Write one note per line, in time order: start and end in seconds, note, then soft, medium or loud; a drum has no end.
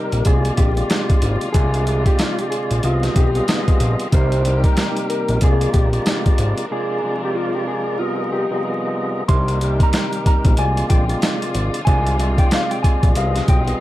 0.00 0.24 C3 medium
0.00 0.25 D#3 medium
0.00 0.26 G3 medium
0.00 1.52 A#3 medium
0.00 0.25 C4 medium
0.00 0.27 D#4 medium
0.00 0.25 G4 medium
0.00 0.23 A#4 medium
0.00 0.27 A#4 loud
0.12 0.23 A#1 medium
0.12 closed hi-hat medium
0.25 0.51 C2 loud
0.25 0.72 C3 medium
0.25 2.82 D3 medium
0.25 4.09 F3 medium
0.25 0.73 G#3 medium
0.25 0.73 F4 medium
0.25 2.82 F4 medium
0.25 0.55 G#4 medium
0.25 0.73 D5 loud
0.25 kick medium
0.25 closed hi-hat medium
0.45 closed hi-hat medium
0.57 0.83 A#1 loud
0.57 1.50 G4 medium
0.57 kick medium
0.57 closed hi-hat medium
0.75 1.49 C3 loud
0.75 1.49 G#3 medium
0.75 1.49 F4 medium
0.75 1.50 D5 loud
0.75 closed hi-hat soft
0.90 snare loud
0.90 closed hi-hat medium
1.10 kick loud
1.10 closed hi-hat soft
1.22 1.38 G#1 loud
1.22 closed hi-hat medium
1.41 closed hi-hat medium
1.53 2.06 C2 loud
1.53 1.85 C3 medium
1.53 1.85 G#3 medium
1.53 2.82 C4 medium
1.53 1.85 F4 medium
1.53 2.02 G#4 loud
1.53 1.86 D5 loud
1.53 kick loud
1.53 closed hi-hat medium
1.74 closed hi-hat medium
1.86 2.81 C3 loud
1.86 2.84 G#3 medium
1.86 2.83 F4 medium
1.86 2.85 D5 loud
1.86 closed hi-hat medium
2.06 2.18 G4 medium
2.06 kick medium
2.06 closed hi-hat medium
2.19 2.38 F4 medium
2.19 snare loud
2.19 closed hi-hat medium
2.38 2.50 G4 medium
2.38 closed hi-hat medium
2.50 2.80 G#4 medium
2.50 closed hi-hat medium
2.71 2.81 A#1 medium
2.71 closed hi-hat medium
2.83 3.09 C2 loud
2.83 3.30 C3 medium
2.83 4.11 D#3 medium
2.83 3.30 G3 medium
2.83 4.11 B3 medium
2.83 3.31 B3 medium
2.83 4.11 F4 medium
2.83 3.31 F4 medium
2.83 3.14 F4 medium
2.83 3.31 G#4 medium
2.83 3.31 D#5 loud
2.83 closed hi-hat medium
3.03 snare soft
3.03 closed hi-hat medium
3.16 3.42 B1 medium
3.16 3.46 G4 medium
3.16 kick loud
3.16 closed hi-hat medium
3.34 4.07 C3 medium
3.34 4.07 G3 medium
3.34 4.07 B3 medium
3.34 4.07 F4 medium
3.34 4.08 G#4 medium
3.34 4.08 D#5 loud
3.34 closed hi-hat soft
3.48 snare loud
3.48 closed hi-hat medium
3.68 kick medium
3.68 closed hi-hat medium
3.80 3.96 A#1 loud
3.80 closed hi-hat medium
3.99 closed hi-hat medium
4.11 4.64 C2 loud
4.11 4.42 C3 loud
4.11 5.40 D#3 medium
4.11 4.43 G3 medium
4.11 6.68 A#3 medium
4.11 5.40 C4 medium
4.11 4.43 D#4 medium
4.11 5.40 G4 medium
4.11 4.43 A#4 loud
4.11 4.62 C5 medium
4.11 kick loud
4.11 closed hi-hat medium
4.32 closed hi-hat soft
4.45 5.40 C3 medium
4.45 5.42 G3 medium
4.45 5.42 D#4 medium
4.45 5.43 A#4 loud
4.45 closed hi-hat medium
4.64 5.07 A#4 medium
4.64 kick medium
4.64 closed hi-hat medium
4.77 snare loud
4.77 closed hi-hat medium
4.97 closed hi-hat medium
5.10 5.39 A#4 medium
5.10 closed hi-hat medium
5.28 5.39 A#1 medium
5.28 closed hi-hat medium
5.41 5.67 C2 loud
5.41 5.88 C3 medium
5.41 6.70 F3 medium
5.41 5.89 G#3 medium
5.41 7.98 D4 medium
5.41 5.89 F4 medium
5.41 5.72 G#4 loud
5.41 9.26 A#4 medium
5.41 5.89 D5 loud
5.41 kick medium
5.41 closed hi-hat medium
5.61 closed hi-hat medium
5.73 6.00 A#1 loud
5.73 6.66 G4 medium
5.73 kick loud
5.73 closed hi-hat medium
5.92 6.65 C3 medium
5.92 6.65 G#3 medium
5.92 6.65 F4 medium
5.92 6.66 D5 loud
5.92 closed hi-hat soft
6.06 snare loud
6.06 closed hi-hat medium
6.26 kick medium
6.26 closed hi-hat medium
6.38 6.54 G#1 loud
6.38 closed hi-hat medium
6.58 closed hi-hat medium
6.70 7.01 C3 medium
6.70 7.97 F3 medium
6.70 7.01 G#3 medium
6.70 7.99 C4 medium
6.70 7.01 F4 medium
6.70 7.20 G#4 medium
6.70 7.02 D5 loud
7.03 7.98 C3 loud
7.03 8.00 G#3 medium
7.03 7.99 F4 medium
7.03 8.01 D5 loud
7.25 7.35 G4 medium
7.35 7.52 F4 medium
7.55 7.67 G4 medium
7.68 7.97 G#4 medium
7.98 8.46 C3 medium
7.98 9.27 F3 medium
7.98 8.47 G3 medium
7.98 9.27 B3 medium
7.98 8.47 B3 medium
7.98 9.27 D#4 medium
7.98 8.28 F4 medium
7.98 8.47 F4 medium
7.98 8.47 G#4 medium
7.98 8.47 D#5 loud
8.32 8.61 G4 medium
8.50 9.23 C3 medium
8.50 9.23 G3 medium
8.50 9.23 B3 medium
8.50 9.24 F4 medium
8.50 9.24 G#4 medium
8.50 9.24 D#5 loud
9.28 9.80 C2 loud
9.28 9.58 C3 loud
9.28 10.57 D#3 medium
9.28 9.59 G3 medium
9.28 11.85 A#3 medium
9.28 10.57 C4 medium
9.28 9.59 D#4 medium
9.28 10.57 G4 medium
9.28 9.60 A#4 loud
9.28 9.77 C6 loud
9.28 kick loud
9.28 closed hi-hat loud
9.48 closed hi-hat medium
9.61 10.56 C3 loud
9.61 10.58 G3 medium
9.61 10.59 D#4 medium
9.61 10.59 A#4 loud
9.61 closed hi-hat medium
9.80 10.24 A#5 medium
9.80 kick medium
9.80 closed hi-hat medium
9.93 snare loud
9.93 closed hi-hat medium
10.13 closed hi-hat medium
10.26 10.56 A#5 medium
10.26 kick medium
10.26 closed hi-hat medium
10.45 10.55 A#1 loud
10.45 kick loud
10.45 closed hi-hat medium
10.57 10.84 C2 loud
10.57 11.04 C3 medium
10.57 13.14 D3 medium
10.57 13.80 F3 medium
10.57 11.05 G#3 medium
10.57 11.05 F4 medium
10.57 13.14 F4 medium
10.57 11.05 D5 loud
10.57 10.87 G#5 medium
10.57 closed hi-hat medium
10.77 closed hi-hat medium
10.89 11.16 A#1 loud
10.89 11.83 G5 medium
10.89 kick loud
10.89 closed hi-hat medium
11.08 11.81 C3 loud
11.08 11.81 G#3 medium
11.08 11.82 F4 medium
11.08 11.82 D5 loud
11.08 closed hi-hat soft
11.22 snare loud
11.22 closed hi-hat medium
11.42 closed hi-hat medium
11.55 11.70 G#1 loud
11.55 closed hi-hat medium
11.74 closed hi-hat medium
11.85 12.38 C2 loud
11.85 12.17 C3 medium
11.85 12.17 G#3 medium
11.85 13.15 C4 medium
11.85 12.18 F4 medium
11.85 12.18 D5 loud
11.85 12.34 G#5 loud
11.85 kick loud
11.85 closed hi-hat loud
12.07 closed hi-hat medium
12.19 13.14 C3 loud
12.19 13.16 G#3 medium
12.19 13.15 F4 medium
12.19 13.17 D5 loud
12.19 closed hi-hat medium
12.38 12.50 G5 medium
12.38 kick medium
12.38 closed hi-hat medium
12.51 12.71 F5 loud
12.51 snare loud
12.51 closed hi-hat medium
12.71 12.82 G5 medium
12.71 closed hi-hat medium
12.83 13.12 G#5 medium
12.83 kick medium
12.83 closed hi-hat medium
13.03 13.13 A#1 medium
13.03 kick medium
13.03 closed hi-hat medium
13.15 13.42 C2 loud
13.15 13.62 C3 loud
13.15 13.80 D#3 medium
13.15 13.63 G3 medium
13.15 13.80 B3 medium
13.15 13.63 B3 medium
13.15 13.80 F4 medium
13.15 13.63 F4 medium
13.15 13.63 G#4 medium
13.15 13.64 D#5 loud
13.15 13.46 F5 medium
13.15 closed hi-hat medium
13.36 snare soft
13.36 closed hi-hat medium
13.48 13.74 B1 medium
13.48 13.78 G5 medium
13.48 kick loud
13.48 closed hi-hat medium
13.66 13.80 C3 loud
13.66 13.80 G3 medium
13.66 13.80 B3 medium
13.66 13.80 F4 medium
13.66 13.80 G#4 medium
13.66 13.80 D#5 loud
13.66 closed hi-hat soft